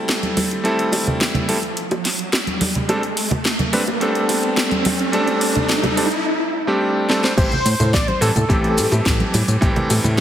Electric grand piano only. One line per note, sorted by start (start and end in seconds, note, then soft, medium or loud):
0.00 0.61 G3 medium
0.00 0.61 A3 medium
0.00 0.61 C4 medium
0.00 0.62 E4 medium
0.00 0.62 A4 medium
0.64 1.45 G3 medium
0.64 1.45 A3 medium
0.64 1.46 C4 medium
0.64 1.46 E4 medium
0.64 1.46 A4 loud
1.48 1.56 G3 medium
1.48 1.56 A3 medium
1.48 1.56 C4 medium
1.48 1.56 E4 medium
1.48 1.56 A4 medium
2.89 3.01 G3 medium
2.89 3.01 A3 medium
2.89 3.01 C4 medium
2.89 3.01 D4 medium
2.89 3.01 A4 medium
3.73 3.80 G3 loud
3.73 3.81 A3 medium
3.73 3.81 C4 medium
3.73 3.81 D4 medium
3.73 3.81 B4 loud
4.00 5.10 G3 medium
4.00 5.10 A3 medium
4.00 5.10 C4 medium
4.00 5.10 D4 medium
4.00 5.11 A4 loud
5.12 5.94 G3 loud
5.12 5.94 A3 medium
5.12 5.94 C4 medium
5.12 5.94 D4 medium
5.12 5.95 A4 loud
5.97 6.05 G3 medium
5.97 6.05 A3 medium
5.97 6.05 C4 medium
5.97 6.05 D4 medium
5.97 6.05 A4 loud
6.67 7.06 G3 medium
6.67 7.06 A3 medium
6.67 7.06 C4 medium
6.67 7.06 D4 medium
6.67 7.06 G4 loud
7.09 7.20 G3 loud
7.09 7.20 A3 medium
7.09 7.20 C4 medium
7.09 7.21 D4 medium
7.09 7.21 A4 loud
7.23 7.31 G3 medium
7.23 7.31 A3 medium
7.23 7.31 C4 medium
7.23 7.31 D4 medium
7.23 7.31 C5 loud
7.37 7.49 E3 medium
7.37 7.49 G3 medium
7.37 7.49 A3 medium
7.37 7.50 C4 medium
7.37 7.50 G4 medium
8.21 8.29 E3 loud
8.21 8.29 G3 medium
8.21 8.29 A3 medium
8.21 8.29 C4 medium
8.21 8.29 A4 loud
8.48 9.58 E3 medium
8.48 9.58 G3 medium
8.48 9.59 A3 medium
8.48 9.59 C4 medium
8.48 9.59 G4 loud
9.61 10.21 E3 loud
9.61 10.21 G3 medium
9.61 10.21 A3 medium
9.61 10.21 C4 medium
9.61 10.21 G4 loud